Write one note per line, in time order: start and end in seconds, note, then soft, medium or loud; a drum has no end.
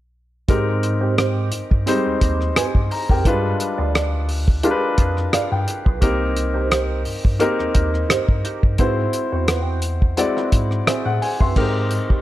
0.48 1.49 G#2 loud
0.48 1.51 G#3 medium
0.48 0.70 C4 medium
0.48 1.51 C4 medium
0.48 1.51 D#4 medium
0.48 0.67 G4 medium
0.48 1.51 G4 medium
0.48 0.66 A#4 medium
0.48 1.52 A#4 medium
0.48 kick medium
0.48 closed hi-hat medium
0.67 muted clean electric guitar stroke soft
0.83 muted clean electric guitar stroke soft
0.83 closed hi-hat medium
1.01 1.16 C4 soft
1.01 1.16 G4 soft
1.01 1.16 C5 medium
1.17 1.49 C4 medium
1.17 1.50 G4 medium
1.17 1.50 C5 medium
1.17 cross-stick loud
1.17 closed hi-hat medium
1.52 muted clean electric guitar stroke soft
1.52 closed hi-hat medium
1.71 1.84 G2 medium
1.71 muted clean electric guitar stroke soft
1.71 kick medium
1.86 2.90 G3 medium
1.86 2.89 G#3 medium
1.86 2.08 C4 medium
1.86 2.90 C4 medium
1.86 2.90 D#4 medium
1.86 2.05 G4 medium
1.86 2.04 A#4 medium
1.86 2.22 C5 medium
1.86 closed hi-hat medium
2.05 2.13 D#2 soft
2.05 muted clean electric guitar stroke soft
2.21 2.49 D#2 medium
2.21 2.39 C4 medium
2.21 2.39 G4 soft
2.21 2.39 A#4 medium
2.21 kick medium
2.21 closed hi-hat medium
2.41 cross-stick soft
2.56 2.77 C4 medium
2.56 2.77 G4 medium
2.56 2.78 C5 medium
2.56 2.89 C5 soft
2.56 2.89 G#5 medium
2.56 cross-stick loud
2.56 closed hi-hat medium
2.75 2.87 G2 medium
2.75 kick medium
2.91 3.09 A#5 medium
2.91 muted clean electric guitar stroke soft
2.91 open hi-hat soft
3.09 3.22 F2 medium
3.09 3.24 C4 soft
3.09 3.24 G4 soft
3.09 3.24 A#4 soft
3.09 3.43 A#4 medium
3.09 3.43 G5 medium
3.09 kick medium
3.25 3.53 G2 loud
3.25 4.29 G3 medium
3.25 4.28 G#3 medium
3.25 4.29 D4 medium
3.25 3.46 F4 medium
3.25 4.29 F4 medium
3.25 3.43 G#4 medium
3.25 3.43 B4 medium
3.25 4.29 B4 medium
3.25 kick medium
3.25 closed hi-hat medium
3.44 muted clean electric guitar stroke soft
3.60 muted clean electric guitar stroke soft
3.60 closed hi-hat medium
3.78 4.60 D2 medium
3.78 3.93 F4 soft
3.78 3.93 G#4 medium
3.78 3.93 D5 medium
3.94 4.26 F4 medium
3.94 4.27 G#4 medium
3.94 4.27 D5 medium
3.94 cross-stick loud
3.94 closed hi-hat medium
4.29 muted clean electric guitar stroke soft
4.29 open hi-hat soft
4.48 muted clean electric guitar stroke soft
4.48 kick medium
4.63 5.66 G#3 medium
4.63 5.66 D4 medium
4.63 4.85 F4 medium
4.63 5.66 F4 medium
4.63 5.67 G4 medium
4.63 4.82 G#4 medium
4.63 4.71 A#4 medium
4.63 4.81 B4 medium
4.63 closed hi-hat medium
4.71 5.70 B4 medium
4.83 muted clean electric guitar stroke soft
4.98 5.26 F2 medium
4.98 5.15 F4 soft
4.98 5.16 G#4 medium
4.98 5.16 B4 medium
4.98 kick medium
4.98 closed hi-hat medium
5.17 muted clean electric guitar stroke soft
5.17 cross-stick soft
5.33 5.41 G2 soft
5.33 5.54 F4 medium
5.33 5.54 G#4 medium
5.33 5.54 D5 medium
5.33 5.50 F5 medium
5.33 cross-stick loud
5.33 closed hi-hat medium
5.52 5.64 G2 medium
5.52 5.99 G5 medium
5.67 muted clean electric guitar stroke soft
5.67 closed hi-hat medium
5.85 5.99 B1 medium
5.85 6.01 F4 soft
5.85 6.01 G#4 soft
5.85 6.00 B4 soft
5.85 kick medium
6.01 7.02 C2 medium
6.01 7.04 A#3 medium
6.01 7.04 C4 medium
6.01 6.23 D#4 medium
6.01 7.05 D#4 medium
6.01 6.20 G4 medium
6.01 7.05 G4 medium
6.01 6.20 A#4 medium
6.01 7.05 A#4 medium
6.01 kick medium
6.01 closed hi-hat medium
6.21 muted clean electric guitar stroke soft
6.37 muted clean electric guitar stroke soft
6.37 closed hi-hat medium
6.54 6.69 D#4 soft
6.54 6.70 G4 soft
6.54 6.69 C5 medium
6.70 7.03 D#4 medium
6.70 7.03 G4 medium
6.70 7.03 C5 medium
6.70 cross-stick loud
6.70 closed hi-hat medium
7.05 7.14 G2 soft
7.05 muted clean electric guitar stroke soft
7.05 open hi-hat soft
7.24 7.38 G2 medium
7.24 muted clean electric guitar stroke soft
7.24 kick medium
7.40 8.43 A#3 medium
7.40 8.43 C4 medium
7.40 7.61 D#4 medium
7.40 8.43 D#4 medium
7.40 7.58 G4 medium
7.40 8.43 G4 medium
7.40 7.57 A#4 medium
7.40 8.43 A#4 medium
7.40 closed hi-hat medium
7.58 7.66 D#2 soft
7.58 muted clean electric guitar stroke soft
7.58 cross-stick soft
7.74 8.03 D#2 medium
7.74 7.92 D#4 medium
7.74 7.92 G4 medium
7.74 7.92 A#4 medium
7.74 kick medium
7.74 closed hi-hat medium
7.93 muted clean electric guitar stroke soft
7.93 cross-stick soft
8.09 8.31 D#4 medium
8.09 8.28 G4 medium
8.09 8.28 C5 medium
8.09 cross-stick loud
8.09 closed hi-hat medium
8.28 8.41 G2 medium
8.28 muted clean electric guitar stroke soft
8.28 kick medium
8.44 8.61 D#4 soft
8.44 8.62 G4 medium
8.44 8.62 A#4 medium
8.44 closed hi-hat medium
8.63 8.76 G2 medium
8.63 muted clean electric guitar stroke soft
8.63 kick medium
8.78 9.06 G#2 medium
8.78 9.81 G#3 medium
8.78 9.82 C4 medium
8.78 9.00 C4 medium
8.78 9.82 E4 medium
8.78 8.97 F#4 medium
8.78 9.82 F#4 medium
8.78 8.96 B4 medium
8.78 9.82 C5 medium
8.78 kick loud
8.78 closed hi-hat medium
8.97 muted clean electric guitar stroke soft
9.13 muted clean electric guitar stroke soft
9.13 closed hi-hat medium
9.32 10.14 E2 medium
9.32 9.47 C4 soft
9.32 9.47 F#4 medium
9.32 9.47 C5 soft
9.48 9.61 B3 medium
9.48 9.62 F4 medium
9.48 9.62 B4 medium
9.48 cross-stick loud
9.48 closed hi-hat medium
9.61 9.80 C4 medium
9.61 9.81 F#4 medium
9.61 9.81 C5 medium
9.82 closed hi-hat medium
10.01 muted clean electric guitar stroke soft
10.01 kick medium
10.17 11.20 G#3 medium
10.17 11.20 C4 medium
10.17 11.20 E4 medium
10.17 11.20 F#4 medium
10.17 10.87 D5 medium
10.17 muted clean electric guitar stroke soft
10.17 closed hi-hat medium
10.36 10.51 C4 soft
10.36 10.51 F#4 medium
10.36 10.52 B4 medium
10.36 cross-stick soft
10.52 10.80 G#2 medium
10.52 muted clean electric guitar stroke soft
10.52 kick medium
10.52 closed hi-hat medium
10.71 muted clean electric guitar stroke soft
10.71 cross-stick soft
10.87 11.08 C4 medium
10.87 11.08 F#4 medium
10.87 11.05 G#4 soft
10.87 11.08 C5 medium
10.87 11.05 E5 medium
10.87 cross-stick loud
10.87 closed hi-hat medium
11.05 11.18 A2 medium
11.05 11.21 F#5 medium
11.21 11.40 C5 soft
11.21 11.40 G#5 medium
11.21 muted clean electric guitar stroke soft
11.21 open hi-hat soft
11.40 11.53 F#2 medium
11.40 11.54 C4 soft
11.40 11.55 F#4 soft
11.40 11.55 B4 soft
11.40 11.74 E5 soft
11.40 11.73 C6 medium
11.40 kick medium
11.56 11.98 G#2 medium
11.56 12.21 G#3 medium
11.56 11.77 C4 medium
11.56 12.21 C4 medium
11.56 12.21 D#4 medium
11.56 11.74 G4 medium
11.56 12.21 G4 medium
11.56 11.73 A#4 medium
11.56 12.21 A#4 medium
11.56 kick medium
11.56 crash medium
11.74 muted clean electric guitar stroke soft
11.90 muted clean electric guitar stroke soft
11.90 closed hi-hat medium
12.09 12.21 C4 soft
12.09 12.21 G4 soft
12.09 12.21 A#4 soft
12.09 kick medium